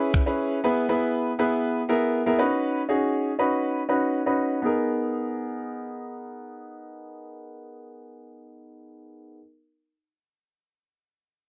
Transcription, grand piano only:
Already playing: C#4 E4 G#4 B4
0.26 C#4 E4 G#4 B4
0.64 B3 E4 G#4 B4
0.89 B3 E4 G#4 B4
1.39 B3 E4 G#4 B4
1.89 B3 E4 G#4 A#4
2.26 B3 E4 G#4 A#4
2.39 C#4 D#4 F#4 B4
2.89 C#4 D#4 F#4 G#4
3.39 C#4 D#4 F#4 B4
3.89 C#4 D#4 F#4 B4
4.26 C#4 D#4 F#4 B4
4.62 B3 D#4 G#4 A#4

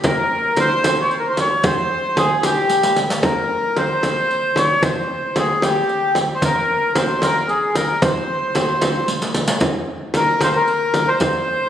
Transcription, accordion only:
0.05 A#4
0.60 C5
1.01 C#5
1.10 C5
1.19 A#4
1.29 C5
1.40 C#5
1.65 C5
2.18 G#4
2.44 G4
3.24 A#4
3.77 C5
4.57 C#5
4.84 C5
5.38 G#4
5.63 G4
6.35 C5
6.44 A#4
6.97 C5
7.23 A#4
7.49 G#4
7.76 A#4
8.03 C5
10.16 A#4
10.43 C5
10.55 A#4
11.08 C5

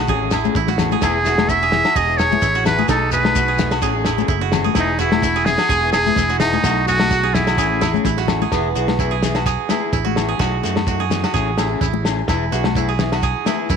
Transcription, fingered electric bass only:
0.09 A1
0.55 A1
1.02 E1
1.95 E1
2.42 A1
2.88 B1
3.82 A1
4.28 F#1
4.75 E1
5.69 E1
6.16 E1
6.64 B1
7.58 A1
8.05 A1
8.52 E1
8.76 B1
9.93 A1
10.39 B1
10.65 F#2
11.34 A1
11.81 A1
12.28 E1
12.52 B1
13.70 F#2

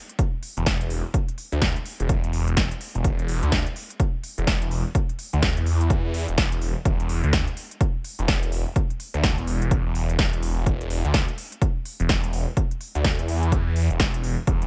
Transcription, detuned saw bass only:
0.57 E1
1.52 D2
2.00 E1
2.24 E1
2.95 E1
3.04 E1
3.19 E1
3.43 D2
4.38 E1
5.33 D2
5.57 E2
6.05 E2
6.28 E1
6.62 E1
6.85 E1
7.00 E1
7.24 D2
8.19 E1
9.14 D2
9.38 E1
9.86 E1
10.33 E1
10.66 E1
10.81 E1
11.05 D2
12.00 E1
12.95 D2
13.19 E2
13.67 E2
13.90 E1
14.23 E1
14.47 E1
14.62 E1

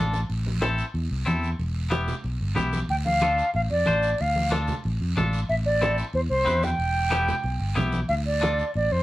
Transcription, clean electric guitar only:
Already playing: D4 F4 A4
0.61 C4 E4 A4
1.26 C4 E4 A4
1.90 B3 E4 G4
2.56 B3 E4 G4
3.22 D4 F4 A4
3.86 D4 F4 C5
4.51 D4 F4 A4
5.17 D4 F4 A4
5.81 C4 E4 A4
6.45 C4 E4 B4
7.10 B3 E4 G4
7.76 B3 E4 G4
8.41 D4 F4 A4

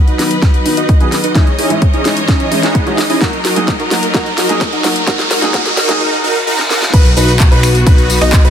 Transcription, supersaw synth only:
0.07 D#4 F#4 B4
0.42 D#4 F#4 B4
0.77 D#4 F#4 D#5
1.00 D#4 F#4 B4
1.24 D#4 F#4 B4
1.35 C#4 D#4 E4 G#4 D#5
1.59 C#4 D#4 E4 G#4 D#5
1.93 C#4 D#4 E4 G#4 D#5
2.28 C#4 D#4 E4 G#4 D#5
2.63 C#4 D#4 E4 G#4 F#5
2.87 C#4 D#4 E4 G#4 D#5
3.10 C#4 D#4 E4 G#4 D#5
3.21 D#4 F#4 A#4
3.45 D#4 F#4 A#4
3.80 D#4 F#4 A#4
4.15 D#4 F#4 A#4
4.38 D#4 F#4 A#4
4.73 D#4 F#4 A#4
5.07 D#4 F#4 A#4
5.31 D#4 F#4 A#4
5.54 D#4 F#4 A#4
5.77 D#4 F#4 A#4
6.00 D#4 F#4 A#4
6.24 D#4 F#4 A#4
6.47 D#4 F#4 A#4
6.70 D#4 F#4 A#4
6.94 D#4 F#4 B4
7.17 D#4 F#4 B4
7.52 D#4 F#4 B4
7.87 D#4 F#4 B4
8.21 D#4 F#4 D#5
8.45 D#4 F#4 B4

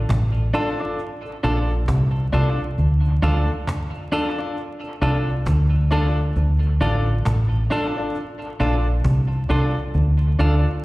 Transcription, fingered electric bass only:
0.09 A1
1.44 A#1
1.88 C2
2.33 C2
2.78 D2
3.23 D2
5.02 C2
5.46 D2
6.36 D2
6.81 A1
7.25 A1
8.60 A#1
9.05 C2
9.50 C2
9.95 D2
10.39 D2

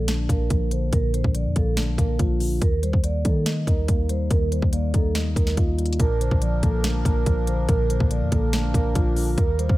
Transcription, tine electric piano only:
Already playing: A#2 D3 F3 A#3
0.08 D4
0.29 A#3
0.51 F3
0.72 D3
0.93 A#2
1.14 D3
1.35 F3
1.56 A#3
1.78 D4
1.98 A#3
2.19 F3
2.40 D3
2.62 D#3
2.83 G3
3.04 A#3
3.25 D#4
3.46 D#5
3.67 D#4
3.88 A#3
4.10 G3
4.30 D#3
4.52 G3
4.73 A#3
4.94 D#4
5.15 D#5
5.36 D#4
5.57 A#3
5.79 G3
6.00 A#2
6.21 D3
6.42 F3
6.63 A#3
6.84 D4
7.05 A#3
7.27 F3
7.48 D3
7.69 A#2
7.90 D3
8.11 F3
8.32 A#3
8.54 D4
8.74 A#3
8.95 F3
9.16 D3
9.38 D#3
9.59 G3

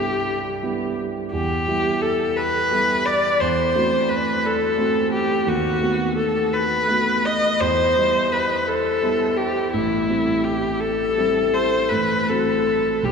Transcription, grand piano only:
Already playing: G2 G3 B3 E4
0.62 G3 B3 E4
1.33 E2
1.67 G3 B3 E4
2.70 G3 B3 E4
3.40 E2
3.75 A3 C4 F#4
4.78 A3 C4 F#4
5.46 D#2
5.80 A3 B3 F#4
6.88 A3 B3 F#4
7.60 E2
7.96 G3 B3 E4
9.02 G3 B3 E4
9.73 A1
10.09 G3 C4 E4
11.17 G3 C4 E4
11.91 A1
12.28 F#3 C4 F#4
13.03 B1

